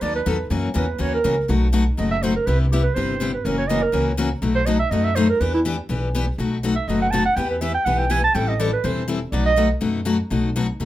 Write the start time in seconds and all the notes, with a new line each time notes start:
0.01 D#2 D#3 F#3 B3 D#4 A4 D5
0.15 B4
0.26 E2 D#3 F#3 B3 D#4 A4
0.50 F#2 C#3 E3 A#3 C#4 F#4
0.74 E2 C#3 E3 A#3 C#4 F#4 B4
0.98 D#2 C#3 E3 A#3 C#4 F#4 C#5
1.14 A#4
1.24 C#2 C#3 E3 A#3 C#4 F#4
1.48 B1 B2 F#3 A3 D#4 F#4
1.73 B2 F#3 A3 D#4 F#4
1.97 F#1 B2 F#3 A3 D#4 F#4 D#5
2.11 E5
2.23 B2 F#3 A3 D#4 F#4 C5
2.36 A#4
2.46 C2 C3 G3 B3 E4 G4 B4
2.61 D4
2.71 C3 G3 B3 E4 G4
2.83 B4
2.95 G1 C3 G3 B3 E4 G4 C5
3.20 C3 G3 B3 E4 G4
3.34 B4
3.45 F#1 C#3 E3 A#3 C#4 F#4 A#4
3.58 C#5
3.68 C#3 E3 A#3 C#4 F#4 D#5
3.82 A#4
3.92 C#2 C#3 E3 A#3 C#4 F#4
4.17 C#3 E3 A#3 C#4 F#4
4.42 B1 B2 F#3 A3 D#4 F#4
4.55 C5
4.66 B2 F#3 A3 D#4 F#4 D#5
4.79 E5
4.90 F#2 B2 F#3 A3 D#4 F#4 D#5
5.04 E5
5.15 B2 F#3 A3 D#4 F#4 C5
5.30 A#4
5.41 E2 E3 B3 D4 G4 B4
5.54 E4
5.65 E3 B3 D4 G4
5.89 B1 E3 B3 D4 G4
6.15 E3 B3 D4 G4
6.38 B1 B2 F#3 A3 D#4 F#4
6.63 B2 F#3 A3 D#4 F#4
6.75 E5
6.88 F#1 B2 F#3 A3 D#4 F#4 D#5
7.02 F#5
7.11 B2 F#3 A3 D#4 F#4 A5
7.25 F#5
7.36 E2 E3 B3 E4 G4 G5
7.50 B4
7.61 E3 B3 E4 G4 E5
7.74 G5
7.85 B1 E3 B3 E4 G4 F#5
7.99 G5
8.10 E3 B3 E4 G4 G#5
8.24 A5
8.34 A1 E3 G3 C4 E4 A4 G5
8.48 D#5
8.59 E3 G3 C4 E4 A4 D5
8.73 B4
8.84 E1 E3 G3 C4 E4 A4 C5
9.08 E3 G3 C4 E4 A4
9.32 B1 B2 F#3 A3 D#4 F#4 D5
9.46 D#5
9.56 B2 F#3 A3 D#4 F#4
9.81 F#2 B2 F#3 A3 D#4 F#4
10.05 B2 F#3 A3 D#4 F#4
10.30 B1 B2 F#3 A3 D#4 F#4
10.56 B2 F#3 A3 D#4 F#4
10.80 C2 B2 F#3 A3 D#4 F#4